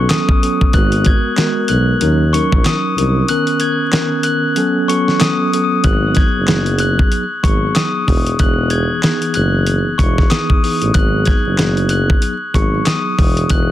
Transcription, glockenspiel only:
0, 0, Header, 1, 2, 480
1, 0, Start_track
1, 0, Key_signature, 5, "minor"
1, 0, Tempo, 638298
1, 553, Time_signature, 4, 2, 24, 8
1, 10314, End_track
2, 0, Start_track
2, 0, Title_t, "Glockenspiel"
2, 0, Program_c, 0, 9
2, 73, Note_on_c, 0, 87, 94
2, 79, Note_on_c, 0, 99, 72
2, 289, Note_off_c, 0, 87, 0
2, 292, Note_off_c, 0, 99, 0
2, 556, Note_on_c, 0, 90, 114
2, 563, Note_on_c, 0, 102, 83
2, 771, Note_off_c, 0, 90, 0
2, 775, Note_off_c, 0, 102, 0
2, 801, Note_on_c, 0, 92, 82
2, 808, Note_on_c, 0, 104, 67
2, 1249, Note_off_c, 0, 92, 0
2, 1253, Note_off_c, 0, 104, 0
2, 1270, Note_on_c, 0, 90, 81
2, 1274, Note_on_c, 0, 102, 66
2, 1723, Note_off_c, 0, 90, 0
2, 1725, Note_off_c, 0, 102, 0
2, 1751, Note_on_c, 0, 85, 79
2, 1756, Note_on_c, 0, 97, 58
2, 1968, Note_off_c, 0, 85, 0
2, 1971, Note_off_c, 0, 97, 0
2, 2001, Note_on_c, 0, 87, 80
2, 2007, Note_on_c, 0, 99, 72
2, 2214, Note_off_c, 0, 87, 0
2, 2217, Note_off_c, 0, 99, 0
2, 2475, Note_on_c, 0, 90, 110
2, 2480, Note_on_c, 0, 102, 85
2, 2690, Note_off_c, 0, 90, 0
2, 2693, Note_off_c, 0, 102, 0
2, 2711, Note_on_c, 0, 92, 81
2, 2719, Note_on_c, 0, 104, 68
2, 3164, Note_off_c, 0, 92, 0
2, 3168, Note_off_c, 0, 104, 0
2, 3187, Note_on_c, 0, 90, 91
2, 3194, Note_on_c, 0, 102, 65
2, 3641, Note_off_c, 0, 90, 0
2, 3645, Note_off_c, 0, 102, 0
2, 3672, Note_on_c, 0, 85, 76
2, 3679, Note_on_c, 0, 97, 60
2, 3889, Note_off_c, 0, 85, 0
2, 3893, Note_off_c, 0, 97, 0
2, 3915, Note_on_c, 0, 87, 89
2, 3922, Note_on_c, 0, 99, 72
2, 4130, Note_off_c, 0, 87, 0
2, 4134, Note_off_c, 0, 99, 0
2, 4394, Note_on_c, 0, 90, 102
2, 4398, Note_on_c, 0, 102, 84
2, 4610, Note_off_c, 0, 90, 0
2, 4612, Note_off_c, 0, 102, 0
2, 4636, Note_on_c, 0, 92, 73
2, 4642, Note_on_c, 0, 104, 62
2, 5086, Note_off_c, 0, 92, 0
2, 5089, Note_off_c, 0, 104, 0
2, 5114, Note_on_c, 0, 90, 89
2, 5120, Note_on_c, 0, 102, 64
2, 5565, Note_off_c, 0, 90, 0
2, 5568, Note_off_c, 0, 102, 0
2, 5591, Note_on_c, 0, 85, 73
2, 5595, Note_on_c, 0, 97, 52
2, 5808, Note_off_c, 0, 85, 0
2, 5811, Note_off_c, 0, 97, 0
2, 5832, Note_on_c, 0, 87, 84
2, 5838, Note_on_c, 0, 99, 63
2, 6049, Note_off_c, 0, 87, 0
2, 6052, Note_off_c, 0, 99, 0
2, 6317, Note_on_c, 0, 90, 105
2, 6323, Note_on_c, 0, 102, 80
2, 6531, Note_off_c, 0, 90, 0
2, 6535, Note_off_c, 0, 102, 0
2, 6547, Note_on_c, 0, 92, 84
2, 6552, Note_on_c, 0, 104, 63
2, 7001, Note_off_c, 0, 92, 0
2, 7004, Note_off_c, 0, 104, 0
2, 7033, Note_on_c, 0, 90, 82
2, 7040, Note_on_c, 0, 102, 61
2, 7485, Note_off_c, 0, 90, 0
2, 7488, Note_off_c, 0, 102, 0
2, 7504, Note_on_c, 0, 85, 68
2, 7511, Note_on_c, 0, 97, 59
2, 7724, Note_off_c, 0, 85, 0
2, 7728, Note_off_c, 0, 97, 0
2, 7748, Note_on_c, 0, 87, 87
2, 7753, Note_on_c, 0, 99, 67
2, 7966, Note_off_c, 0, 87, 0
2, 7969, Note_off_c, 0, 99, 0
2, 8227, Note_on_c, 0, 90, 112
2, 8234, Note_on_c, 0, 102, 82
2, 8446, Note_off_c, 0, 90, 0
2, 8450, Note_off_c, 0, 102, 0
2, 8470, Note_on_c, 0, 92, 78
2, 8476, Note_on_c, 0, 104, 61
2, 8923, Note_off_c, 0, 92, 0
2, 8926, Note_off_c, 0, 104, 0
2, 8951, Note_on_c, 0, 90, 85
2, 8955, Note_on_c, 0, 102, 61
2, 9403, Note_off_c, 0, 90, 0
2, 9406, Note_off_c, 0, 102, 0
2, 9436, Note_on_c, 0, 85, 74
2, 9442, Note_on_c, 0, 97, 57
2, 9651, Note_off_c, 0, 85, 0
2, 9654, Note_off_c, 0, 97, 0
2, 9674, Note_on_c, 0, 87, 91
2, 9680, Note_on_c, 0, 99, 64
2, 9890, Note_off_c, 0, 87, 0
2, 9893, Note_off_c, 0, 99, 0
2, 10157, Note_on_c, 0, 90, 112
2, 10165, Note_on_c, 0, 102, 81
2, 10314, Note_off_c, 0, 90, 0
2, 10314, Note_off_c, 0, 102, 0
2, 10314, End_track
0, 0, End_of_file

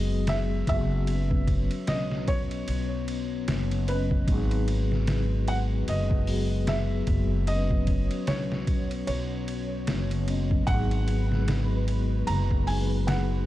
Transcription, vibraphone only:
0, 0, Header, 1, 2, 480
1, 0, Start_track
1, 0, Key_signature, 5, "minor"
1, 0, Tempo, 800000
1, 648, Time_signature, 4, 2, 24, 8
1, 8076, End_track
2, 0, Start_track
2, 0, Title_t, "Vibraphone"
2, 0, Program_c, 0, 11
2, 0, Control_c, 0, 64, 127
2, 0, Note_on_c, 0, 54, 98
2, 0, Note_on_c, 0, 59, 93
2, 0, Note_on_c, 0, 66, 91
2, 0, Note_on_c, 0, 68, 100
2, 380, Note_off_c, 0, 54, 0
2, 385, Note_off_c, 0, 59, 0
2, 388, Note_off_c, 0, 66, 0
2, 392, Note_off_c, 0, 68, 0
2, 395, Note_on_c, 0, 54, 86
2, 405, Note_on_c, 0, 59, 82
2, 421, Note_on_c, 0, 66, 101
2, 618, Note_off_c, 0, 54, 0
2, 623, Note_off_c, 0, 59, 0
2, 626, Note_on_c, 0, 54, 72
2, 631, Note_off_c, 0, 66, 0
2, 642, Note_on_c, 0, 59, 69
2, 656, Control_c, 0, 64, 0
2, 660, Note_on_c, 0, 61, 68
2, 675, Note_on_c, 0, 71, 82
2, 778, Control_c, 0, 64, 127
2, 2293, Note_off_c, 0, 54, 0
2, 2301, Note_off_c, 0, 59, 0
2, 2310, Note_off_c, 0, 61, 0
2, 2318, Note_off_c, 0, 71, 0
2, 2318, Note_on_c, 0, 54, 84
2, 2326, Note_on_c, 0, 59, 82
2, 2335, Note_on_c, 0, 61, 76
2, 2344, Note_on_c, 0, 75, 90
2, 2536, Note_off_c, 0, 54, 0
2, 2543, Note_off_c, 0, 59, 0
2, 2544, Note_on_c, 0, 54, 82
2, 2548, Note_off_c, 0, 61, 0
2, 2552, Note_off_c, 0, 75, 0
2, 2562, Note_on_c, 0, 59, 74
2, 2575, Control_c, 0, 64, 0
2, 2577, Note_on_c, 0, 63, 82
2, 2592, Note_on_c, 0, 68, 95
2, 2683, Control_c, 0, 64, 127
2, 3732, Note_off_c, 0, 54, 0
2, 3741, Note_off_c, 0, 59, 0
2, 3749, Note_off_c, 0, 63, 0
2, 3754, Note_on_c, 0, 54, 96
2, 3756, Note_off_c, 0, 68, 0
2, 3764, Note_on_c, 0, 59, 89
2, 3772, Note_on_c, 0, 66, 89
2, 3780, Note_on_c, 0, 68, 104
2, 4217, Note_off_c, 0, 54, 0
2, 4222, Note_off_c, 0, 59, 0
2, 4226, Note_off_c, 0, 66, 0
2, 4230, Note_off_c, 0, 68, 0
2, 4236, Note_on_c, 0, 54, 88
2, 4243, Note_on_c, 0, 59, 84
2, 4262, Note_on_c, 0, 66, 95
2, 4458, Note_off_c, 0, 54, 0
2, 4462, Note_off_c, 0, 59, 0
2, 4466, Note_on_c, 0, 54, 78
2, 4471, Note_off_c, 0, 66, 0
2, 4483, Note_on_c, 0, 59, 72
2, 4496, Control_c, 0, 64, 0
2, 4499, Note_on_c, 0, 61, 71
2, 4517, Note_on_c, 0, 71, 83
2, 4593, Control_c, 0, 64, 127
2, 6133, Note_off_c, 0, 54, 0
2, 6142, Note_off_c, 0, 59, 0
2, 6150, Note_off_c, 0, 61, 0
2, 6156, Note_on_c, 0, 54, 81
2, 6159, Note_off_c, 0, 71, 0
2, 6165, Note_on_c, 0, 59, 79
2, 6173, Note_on_c, 0, 61, 73
2, 6180, Note_on_c, 0, 75, 93
2, 6377, Note_off_c, 0, 54, 0
2, 6383, Note_off_c, 0, 59, 0
2, 6384, Note_on_c, 0, 54, 80
2, 6387, Note_off_c, 0, 61, 0
2, 6390, Note_off_c, 0, 75, 0
2, 6402, Note_on_c, 0, 59, 80
2, 6416, Control_c, 0, 64, 0
2, 6416, Note_on_c, 0, 63, 75
2, 6433, Note_on_c, 0, 68, 92
2, 6528, Control_c, 0, 64, 127
2, 7572, Note_off_c, 0, 54, 0
2, 7581, Note_off_c, 0, 59, 0
2, 7588, Note_off_c, 0, 63, 0
2, 7597, Note_off_c, 0, 68, 0
2, 7598, Note_on_c, 0, 54, 98
2, 7606, Note_on_c, 0, 59, 89
2, 7613, Note_on_c, 0, 63, 87
2, 7621, Note_on_c, 0, 68, 108
2, 8059, Note_off_c, 0, 54, 0
2, 8063, Note_off_c, 0, 59, 0
2, 8067, Note_off_c, 0, 63, 0
2, 8071, Note_off_c, 0, 68, 0
2, 8076, End_track
0, 0, End_of_file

